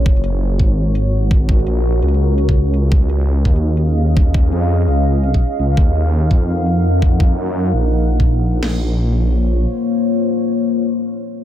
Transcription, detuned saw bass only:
0.06 0.58 F#1 medium
0.60 1.65 G#1 medium
1.67 2.01 A#1 medium
2.03 2.90 C#2 medium
2.92 3.44 C#2 medium
3.45 4.51 D#2 medium
4.52 4.87 F2 loud
4.88 5.25 C#2 medium
5.25 5.40 C2 medium
5.59 5.76 C#2 loud
5.77 6.30 D#2 medium
6.31 7.37 F2 medium
7.38 7.72 F#2 medium
7.73 8.62 A#1 medium
8.63 9.66 A#1 medium

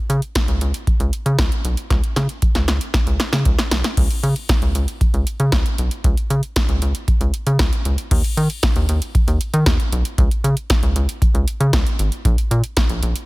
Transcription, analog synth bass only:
0.10 0.21 C#3 loud
0.48 0.59 C#2 loud
0.61 0.72 C#2 loud
1.00 1.11 C#2 loud
1.26 1.37 C#3 loud
1.39 1.50 C#2 loud
1.65 1.76 B1 medium
1.90 2.02 C#2 loud
2.16 2.28 C#3 loud
2.55 2.66 C#2 loud
2.68 2.79 C#2 loud
3.07 3.18 C#2 loud
3.33 3.44 C#3 loud
3.46 3.57 C#2 loud
3.72 3.83 B1 medium
3.97 4.09 C#2 loud
4.23 4.34 C#3 loud
4.62 4.73 C#2 loud
4.75 4.86 C#2 loud
5.14 5.25 C#2 loud
5.40 5.51 C#3 loud
5.53 5.64 C#2 loud
5.79 5.90 B1 medium
6.04 6.16 C#2 loud
6.30 6.41 C#3 loud
6.69 6.80 C#2 loud
6.82 6.93 C#2 loud
7.21 7.32 C#2 loud
7.47 7.58 C#3 loud
7.60 7.71 C#2 loud
7.85 7.97 C#2 medium
8.11 8.22 D#2 loud
8.37 8.48 D#3 loud
8.76 8.87 D#2 loud
8.89 9.00 D#2 loud
9.28 9.39 D#2 loud
9.54 9.65 D#3 loud
9.66 9.78 D#2 loud
9.92 10.03 B1 loud
10.18 10.29 C#2 loud
10.44 10.55 C#3 loud
10.83 10.94 C#2 loud
10.96 11.07 C#2 loud
11.34 11.46 C#2 loud
11.60 11.72 C#3 loud
11.73 11.85 C#2 loud
11.99 12.10 G#1 loud
12.25 12.36 A#1 loud
12.51 12.62 A#2 loud
12.90 13.01 A#1 loud
13.03 13.14 A#1 loud

